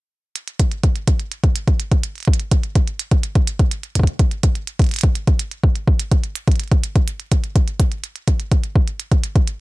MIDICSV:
0, 0, Header, 1, 2, 480
1, 0, Start_track
1, 0, Tempo, 480000
1, 356, Time_signature, 4, 2, 24, 8
1, 9601, End_track
2, 0, Start_track
2, 0, Title_t, "Drums"
2, 356, Note_on_c, 9, 42, 64
2, 456, Note_off_c, 9, 42, 0
2, 476, Note_on_c, 9, 42, 39
2, 576, Note_off_c, 9, 42, 0
2, 595, Note_on_c, 9, 36, 94
2, 595, Note_on_c, 9, 42, 91
2, 695, Note_off_c, 9, 36, 0
2, 695, Note_off_c, 9, 42, 0
2, 715, Note_on_c, 9, 42, 39
2, 815, Note_off_c, 9, 42, 0
2, 835, Note_on_c, 9, 42, 64
2, 836, Note_on_c, 9, 36, 107
2, 935, Note_off_c, 9, 42, 0
2, 936, Note_off_c, 9, 36, 0
2, 956, Note_on_c, 9, 42, 39
2, 1056, Note_off_c, 9, 42, 0
2, 1076, Note_on_c, 9, 36, 99
2, 1076, Note_on_c, 9, 42, 90
2, 1176, Note_off_c, 9, 36, 0
2, 1176, Note_off_c, 9, 42, 0
2, 1195, Note_on_c, 9, 42, 40
2, 1295, Note_off_c, 9, 42, 0
2, 1316, Note_on_c, 9, 42, 65
2, 1416, Note_off_c, 9, 42, 0
2, 1436, Note_on_c, 9, 36, 103
2, 1436, Note_on_c, 9, 42, 40
2, 1536, Note_off_c, 9, 36, 0
2, 1536, Note_off_c, 9, 42, 0
2, 1556, Note_on_c, 9, 42, 87
2, 1656, Note_off_c, 9, 42, 0
2, 1675, Note_on_c, 9, 36, 109
2, 1676, Note_on_c, 9, 42, 38
2, 1775, Note_off_c, 9, 36, 0
2, 1776, Note_off_c, 9, 42, 0
2, 1796, Note_on_c, 9, 42, 66
2, 1896, Note_off_c, 9, 42, 0
2, 1915, Note_on_c, 9, 36, 96
2, 1916, Note_on_c, 9, 42, 39
2, 2015, Note_off_c, 9, 36, 0
2, 2016, Note_off_c, 9, 42, 0
2, 2035, Note_on_c, 9, 42, 89
2, 2135, Note_off_c, 9, 42, 0
2, 2155, Note_on_c, 9, 42, 18
2, 2179, Note_off_c, 9, 42, 0
2, 2179, Note_on_c, 9, 42, 21
2, 2203, Note_off_c, 9, 42, 0
2, 2203, Note_on_c, 9, 42, 25
2, 2227, Note_off_c, 9, 42, 0
2, 2227, Note_on_c, 9, 42, 30
2, 2251, Note_off_c, 9, 42, 0
2, 2251, Note_on_c, 9, 42, 33
2, 2275, Note_on_c, 9, 36, 102
2, 2335, Note_off_c, 9, 42, 0
2, 2335, Note_on_c, 9, 42, 64
2, 2375, Note_off_c, 9, 36, 0
2, 2396, Note_off_c, 9, 42, 0
2, 2396, Note_on_c, 9, 42, 39
2, 2496, Note_off_c, 9, 42, 0
2, 2515, Note_on_c, 9, 36, 115
2, 2515, Note_on_c, 9, 42, 90
2, 2615, Note_off_c, 9, 36, 0
2, 2615, Note_off_c, 9, 42, 0
2, 2635, Note_on_c, 9, 42, 38
2, 2735, Note_off_c, 9, 42, 0
2, 2755, Note_on_c, 9, 36, 100
2, 2755, Note_on_c, 9, 42, 63
2, 2855, Note_off_c, 9, 36, 0
2, 2855, Note_off_c, 9, 42, 0
2, 2875, Note_on_c, 9, 42, 39
2, 2975, Note_off_c, 9, 42, 0
2, 2994, Note_on_c, 9, 42, 92
2, 3094, Note_off_c, 9, 42, 0
2, 3114, Note_on_c, 9, 42, 38
2, 3115, Note_on_c, 9, 36, 101
2, 3214, Note_off_c, 9, 42, 0
2, 3215, Note_off_c, 9, 36, 0
2, 3234, Note_on_c, 9, 42, 66
2, 3334, Note_off_c, 9, 42, 0
2, 3354, Note_on_c, 9, 42, 40
2, 3355, Note_on_c, 9, 36, 118
2, 3454, Note_off_c, 9, 42, 0
2, 3455, Note_off_c, 9, 36, 0
2, 3474, Note_on_c, 9, 42, 88
2, 3574, Note_off_c, 9, 42, 0
2, 3594, Note_on_c, 9, 42, 38
2, 3595, Note_on_c, 9, 36, 99
2, 3694, Note_off_c, 9, 42, 0
2, 3695, Note_off_c, 9, 36, 0
2, 3714, Note_on_c, 9, 42, 66
2, 3814, Note_off_c, 9, 42, 0
2, 3834, Note_on_c, 9, 42, 40
2, 3934, Note_off_c, 9, 42, 0
2, 3954, Note_on_c, 9, 36, 47
2, 3954, Note_on_c, 9, 42, 92
2, 3994, Note_off_c, 9, 36, 0
2, 3994, Note_on_c, 9, 36, 67
2, 4035, Note_off_c, 9, 36, 0
2, 4035, Note_on_c, 9, 36, 82
2, 4054, Note_off_c, 9, 42, 0
2, 4074, Note_on_c, 9, 42, 39
2, 4135, Note_off_c, 9, 36, 0
2, 4173, Note_off_c, 9, 42, 0
2, 4194, Note_on_c, 9, 42, 66
2, 4195, Note_on_c, 9, 36, 114
2, 4294, Note_off_c, 9, 42, 0
2, 4295, Note_off_c, 9, 36, 0
2, 4314, Note_on_c, 9, 42, 38
2, 4414, Note_off_c, 9, 42, 0
2, 4433, Note_on_c, 9, 42, 90
2, 4435, Note_on_c, 9, 36, 104
2, 4533, Note_off_c, 9, 42, 0
2, 4535, Note_off_c, 9, 36, 0
2, 4554, Note_on_c, 9, 42, 39
2, 4654, Note_off_c, 9, 42, 0
2, 4674, Note_on_c, 9, 42, 62
2, 4774, Note_off_c, 9, 42, 0
2, 4794, Note_on_c, 9, 42, 37
2, 4795, Note_on_c, 9, 36, 104
2, 4818, Note_off_c, 9, 42, 0
2, 4818, Note_on_c, 9, 42, 29
2, 4842, Note_off_c, 9, 42, 0
2, 4842, Note_on_c, 9, 42, 23
2, 4865, Note_off_c, 9, 42, 0
2, 4865, Note_on_c, 9, 42, 20
2, 4889, Note_off_c, 9, 42, 0
2, 4889, Note_on_c, 9, 42, 16
2, 4895, Note_off_c, 9, 36, 0
2, 4914, Note_off_c, 9, 42, 0
2, 4914, Note_on_c, 9, 42, 40
2, 4938, Note_off_c, 9, 42, 0
2, 4938, Note_on_c, 9, 42, 50
2, 4962, Note_off_c, 9, 42, 0
2, 4962, Note_on_c, 9, 42, 60
2, 4986, Note_off_c, 9, 42, 0
2, 4986, Note_on_c, 9, 42, 67
2, 5010, Note_off_c, 9, 42, 0
2, 5010, Note_on_c, 9, 42, 78
2, 5035, Note_on_c, 9, 36, 114
2, 5110, Note_off_c, 9, 42, 0
2, 5135, Note_off_c, 9, 36, 0
2, 5154, Note_on_c, 9, 42, 63
2, 5254, Note_off_c, 9, 42, 0
2, 5274, Note_on_c, 9, 42, 39
2, 5275, Note_on_c, 9, 36, 106
2, 5374, Note_off_c, 9, 42, 0
2, 5375, Note_off_c, 9, 36, 0
2, 5394, Note_on_c, 9, 42, 87
2, 5494, Note_off_c, 9, 42, 0
2, 5514, Note_on_c, 9, 42, 39
2, 5614, Note_off_c, 9, 42, 0
2, 5635, Note_on_c, 9, 36, 108
2, 5735, Note_off_c, 9, 36, 0
2, 5755, Note_on_c, 9, 42, 38
2, 5855, Note_off_c, 9, 42, 0
2, 5875, Note_on_c, 9, 36, 123
2, 5975, Note_off_c, 9, 36, 0
2, 5995, Note_on_c, 9, 42, 90
2, 6095, Note_off_c, 9, 42, 0
2, 6115, Note_on_c, 9, 36, 102
2, 6115, Note_on_c, 9, 42, 61
2, 6215, Note_off_c, 9, 36, 0
2, 6215, Note_off_c, 9, 42, 0
2, 6236, Note_on_c, 9, 42, 38
2, 6336, Note_off_c, 9, 42, 0
2, 6355, Note_on_c, 9, 42, 84
2, 6455, Note_off_c, 9, 42, 0
2, 6476, Note_on_c, 9, 36, 104
2, 6476, Note_on_c, 9, 42, 34
2, 6515, Note_off_c, 9, 42, 0
2, 6515, Note_on_c, 9, 42, 29
2, 6556, Note_off_c, 9, 42, 0
2, 6556, Note_on_c, 9, 42, 23
2, 6576, Note_off_c, 9, 36, 0
2, 6596, Note_off_c, 9, 42, 0
2, 6596, Note_on_c, 9, 42, 61
2, 6636, Note_off_c, 9, 42, 0
2, 6636, Note_on_c, 9, 42, 16
2, 6676, Note_off_c, 9, 42, 0
2, 6676, Note_on_c, 9, 42, 12
2, 6715, Note_off_c, 9, 42, 0
2, 6715, Note_on_c, 9, 36, 110
2, 6715, Note_on_c, 9, 42, 36
2, 6815, Note_off_c, 9, 36, 0
2, 6815, Note_off_c, 9, 42, 0
2, 6835, Note_on_c, 9, 42, 86
2, 6935, Note_off_c, 9, 42, 0
2, 6956, Note_on_c, 9, 36, 98
2, 6956, Note_on_c, 9, 42, 38
2, 7056, Note_off_c, 9, 36, 0
2, 7056, Note_off_c, 9, 42, 0
2, 7076, Note_on_c, 9, 42, 63
2, 7176, Note_off_c, 9, 42, 0
2, 7196, Note_on_c, 9, 42, 36
2, 7296, Note_off_c, 9, 42, 0
2, 7316, Note_on_c, 9, 36, 112
2, 7316, Note_on_c, 9, 42, 82
2, 7416, Note_off_c, 9, 36, 0
2, 7416, Note_off_c, 9, 42, 0
2, 7436, Note_on_c, 9, 42, 37
2, 7536, Note_off_c, 9, 42, 0
2, 7556, Note_on_c, 9, 36, 120
2, 7556, Note_on_c, 9, 42, 61
2, 7656, Note_off_c, 9, 36, 0
2, 7656, Note_off_c, 9, 42, 0
2, 7676, Note_on_c, 9, 42, 37
2, 7776, Note_off_c, 9, 42, 0
2, 7796, Note_on_c, 9, 36, 107
2, 7796, Note_on_c, 9, 42, 89
2, 7896, Note_off_c, 9, 36, 0
2, 7896, Note_off_c, 9, 42, 0
2, 7916, Note_on_c, 9, 42, 37
2, 8016, Note_off_c, 9, 42, 0
2, 8036, Note_on_c, 9, 42, 60
2, 8136, Note_off_c, 9, 42, 0
2, 8156, Note_on_c, 9, 42, 37
2, 8256, Note_off_c, 9, 42, 0
2, 8275, Note_on_c, 9, 36, 96
2, 8276, Note_on_c, 9, 42, 84
2, 8375, Note_off_c, 9, 36, 0
2, 8376, Note_off_c, 9, 42, 0
2, 8396, Note_on_c, 9, 42, 37
2, 8496, Note_off_c, 9, 42, 0
2, 8515, Note_on_c, 9, 36, 114
2, 8516, Note_on_c, 9, 42, 57
2, 8615, Note_off_c, 9, 36, 0
2, 8616, Note_off_c, 9, 42, 0
2, 8636, Note_on_c, 9, 42, 35
2, 8736, Note_off_c, 9, 42, 0
2, 8755, Note_on_c, 9, 36, 104
2, 8855, Note_off_c, 9, 36, 0
2, 8876, Note_on_c, 9, 42, 37
2, 8976, Note_off_c, 9, 42, 0
2, 8996, Note_on_c, 9, 42, 60
2, 9096, Note_off_c, 9, 42, 0
2, 9115, Note_on_c, 9, 36, 102
2, 9116, Note_on_c, 9, 42, 38
2, 9215, Note_off_c, 9, 36, 0
2, 9216, Note_off_c, 9, 42, 0
2, 9236, Note_on_c, 9, 42, 80
2, 9336, Note_off_c, 9, 42, 0
2, 9355, Note_on_c, 9, 36, 108
2, 9356, Note_on_c, 9, 42, 34
2, 9455, Note_off_c, 9, 36, 0
2, 9456, Note_off_c, 9, 42, 0
2, 9475, Note_on_c, 9, 42, 60
2, 9575, Note_off_c, 9, 42, 0
2, 9601, End_track
0, 0, End_of_file